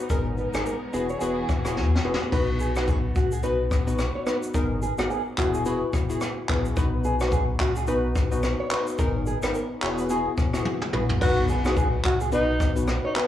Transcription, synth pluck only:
0.10 0.50 B3 medium
0.10 0.50 D#4 medium
0.10 0.50 G#4 medium
0.10 0.50 A#4 loud
0.54 0.72 B3 medium
0.54 0.72 D#4 medium
0.54 0.73 G#4 medium
0.54 0.73 A#4 medium
0.93 1.19 B3 medium
0.93 1.19 E4 medium
0.93 1.19 F#4 medium
0.93 1.20 G#4 loud
1.21 1.42 B3 medium
1.21 1.42 E4 medium
1.21 1.42 F#4 medium
1.21 1.42 G#4 loud
1.65 1.83 B3 medium
1.65 1.84 E4 medium
1.65 1.84 F#4 medium
1.65 1.84 G#4 medium
2.04 2.25 B3 medium
2.04 2.26 E4 medium
2.04 2.26 F#4 medium
2.04 2.26 G#4 medium
2.32 2.72 B3 medium
2.32 2.72 D#4 medium
2.32 2.72 F#4 medium
2.32 2.72 B4 loud
2.76 2.94 B3 medium
2.76 2.95 D#4 medium
2.76 2.95 F#4 medium
2.76 2.95 B4 medium
3.43 3.64 B3 medium
3.43 3.64 D#4 medium
3.43 3.64 F#4 medium
3.43 3.64 B4 loud
3.87 4.06 B3 medium
3.87 4.06 D#4 medium
3.87 4.06 F#4 medium
3.87 4.06 B4 medium
4.26 4.48 B3 medium
4.26 4.48 D#4 medium
4.26 4.48 F#4 medium
4.26 4.48 B4 medium
4.54 4.94 B3 medium
4.54 4.94 D#4 medium
4.54 4.95 G#4 medium
4.54 4.95 A#4 loud
4.98 5.17 B3 medium
4.98 5.17 D#4 medium
4.98 5.17 G#4 medium
4.98 5.17 A#4 medium
5.38 5.64 B3 medium
5.38 5.64 E4 medium
5.38 5.64 F#4 medium
5.38 5.64 G#4 loud
5.66 5.87 B3 medium
5.66 5.87 E4 medium
5.66 5.87 F#4 medium
5.66 5.87 G#4 loud
6.09 6.28 B3 medium
6.09 6.28 E4 medium
6.09 6.28 F#4 medium
6.09 6.28 G#4 medium
6.49 6.70 B3 medium
6.49 6.70 E4 medium
6.49 6.70 F#4 medium
6.49 6.70 G#4 medium
6.76 7.17 B3 loud
6.76 7.17 D#4 medium
6.76 7.17 F#4 medium
6.76 7.17 B4 loud
7.21 7.39 B3 medium
7.21 7.39 D#4 medium
7.21 7.39 F#4 medium
7.21 7.39 B4 medium
7.88 8.09 B3 medium
7.88 8.09 D#4 medium
7.88 8.09 F#4 medium
7.88 8.09 B4 loud
8.31 8.50 B3 medium
8.31 8.50 D#4 medium
8.31 8.50 F#4 medium
8.31 8.50 B4 medium
8.71 8.92 B3 medium
8.71 8.92 D#4 medium
8.71 8.92 F#4 medium
8.71 8.92 B4 medium
8.99 9.39 B3 medium
8.99 9.39 D#4 medium
8.99 9.39 G#4 medium
8.99 9.39 A#4 loud
9.42 9.61 B3 medium
9.42 9.61 D#4 medium
9.42 9.61 G#4 medium
9.42 9.62 A#4 medium
9.82 10.08 B3 medium
9.82 10.08 E4 medium
9.82 10.08 F#4 medium
9.82 10.08 G#4 loud
10.10 10.31 B3 medium
10.10 10.31 E4 medium
10.10 10.31 F#4 medium
10.10 10.31 G#4 loud
10.54 10.72 B3 medium
10.54 10.72 E4 medium
10.54 10.72 F#4 medium
10.54 10.73 G#4 medium
10.93 11.14 B3 medium
10.93 11.14 E4 medium
10.93 11.14 F#4 medium
10.93 11.14 G#4 medium
11.21 11.61 B3 medium
11.21 11.61 D#4 medium
11.21 11.61 F#4 medium
11.21 11.61 B4 loud
11.65 11.83 B3 medium
11.65 11.84 D#4 medium
11.65 11.84 F#4 medium
11.65 11.84 B4 medium
12.32 12.53 B3 medium
12.32 12.53 D#4 medium
12.32 12.53 F#4 medium
12.32 12.53 B4 loud
12.75 12.94 B3 medium
12.75 12.94 D#4 medium
12.75 12.95 F#4 medium
12.75 12.95 B4 medium
13.15 13.27 B3 medium
13.15 13.27 D#4 medium
13.15 13.27 F#4 medium
13.15 13.27 B4 medium

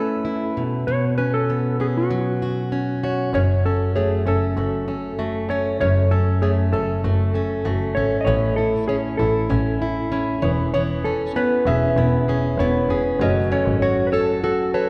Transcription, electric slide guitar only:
0.00 0.52 A4 medium
0.87 1.17 C#5 medium
1.18 1.33 B4 medium
1.34 1.79 A4 medium
1.81 1.86 G#4 medium
1.98 3.00 F#4 medium
3.04 3.34 C#5 medium
3.35 3.63 C#5 medium
3.66 3.95 A4 medium
3.96 4.24 G#4 medium
4.28 5.54 A4 medium
5.50 5.80 C#5 medium
5.81 6.12 C#5 medium
6.11 6.40 A4 medium
6.42 6.50 G#4 medium
6.73 8.00 A4 medium
7.95 8.18 C#5 medium
8.21 8.55 C#5 medium
8.21 8.27 D#5 medium
8.56 8.86 A4 medium
8.88 8.96 G#4 medium
9.17 10.46 A4 medium
10.42 10.51 C#5 medium
10.74 10.82 C#5 medium
11.04 11.36 A4 medium
11.36 11.68 B4 medium
11.67 12.86 E5 loud
12.59 13.22 C#5 medium
13.22 13.52 D#5 medium
13.52 13.81 C#5 medium
13.82 14.07 C#5 medium
14.07 14.12 B4 medium
14.13 14.41 A4 medium
14.44 14.72 A4 medium
14.74 14.89 B4 medium

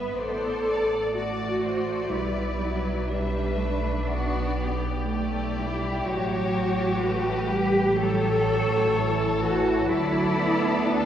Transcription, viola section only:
0.00 1.16 B3 medium
1.15 2.11 A3 medium
2.12 2.62 G3 medium
2.62 3.12 F#3 medium
3.11 3.61 G3 medium
3.59 4.10 A3 medium
4.08 5.08 B3 medium
5.09 5.57 A3 medium
5.58 6.06 G3 medium
6.05 7.01 F#3 medium
7.01 7.48 A3 medium
7.48 7.96 G3 medium
7.97 8.91 F#3 medium
8.93 9.40 E3 loud
9.41 9.89 E3 loud
9.91 10.40 F#3 medium
10.40 11.05 B3 loud

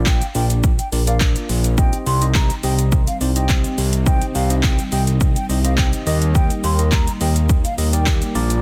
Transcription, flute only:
0.06 0.26 G5 medium
0.35 0.45 G5 medium
0.79 0.88 G5 medium
1.07 1.17 F5 medium
1.78 1.98 G5 loud
2.06 2.26 C6 medium
2.35 2.55 A#5 medium
2.63 2.74 G5 medium
3.07 3.17 F5 medium
3.36 3.56 G5 medium
4.06 4.26 G5 loud
4.35 4.55 F5 medium
4.63 4.83 G5 medium
4.92 5.02 G5 medium
5.36 5.45 G5 medium
5.64 5.74 F5 medium
5.78 5.88 G5 medium
6.06 6.17 D#5 medium
6.35 6.55 G5 loud
6.64 6.83 C6 medium
6.92 7.12 A#5 medium
7.21 7.31 G5 medium
7.64 7.74 F5 medium
7.93 8.13 G5 medium

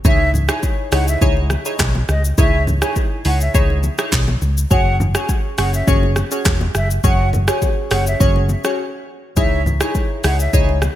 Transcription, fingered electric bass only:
0.05 0.49 C#2 loud
0.92 1.14 C#2 medium
1.22 1.55 C#2 loud
1.80 2.02 B1 loud
2.09 2.31 C#2 medium
2.38 2.82 C#2 loud
3.25 3.47 C#2 loud
3.55 3.88 C#2 loud
4.13 4.35 B1 loud
4.42 4.64 C#2 loud
4.71 5.15 F#1 loud
5.58 5.80 F#1 medium
5.88 6.21 F#1 loud
6.46 6.68 E1 loud
6.75 6.97 F#1 loud
7.04 7.48 F#1 loud
7.91 8.13 F#1 medium
8.20 8.54 F#1 loud
9.37 9.81 C#2 loud
10.24 10.46 C#2 loud
10.53 10.87 C#2 loud

